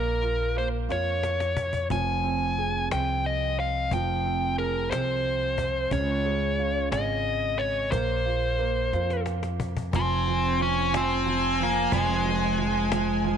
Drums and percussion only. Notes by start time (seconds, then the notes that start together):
0.90 cajon slap
1.23 cajon slap
1.40 cajon slap
1.57 cajon bass
1.73 cajon bass
1.90 cajon bass
2.24 cajon slap
2.58 cajon slap
2.91 cajon slap
3.24 cajon slap
3.58 cajon slap
3.91 cajon bass
4.25 cajon slap
4.59 cajon slap
4.92 cajon slap
5.24 cajon slap
5.58 cajon bass
5.91 cajon bass
6.25 cajon slap
6.59 cajon slap
6.92 cajon slap
7.25 cajon slap
7.58 cajon slap
7.92 cajon bass
8.26 cajon slap
8.59 cajon slap
8.92 cajon slap
9.10 cajon slap
9.26 cajon slap
9.43 cajon slap
9.60 cajon bass
9.77 cajon bass
9.93 cajon bass
10.27 cajon slap
10.61 cajon slap
10.94 cajon slap
11.26 cajon slap
11.60 cajon slap
11.92 cajon bass
12.59 cajon slap
12.92 cajon slap
13.24 cajon slap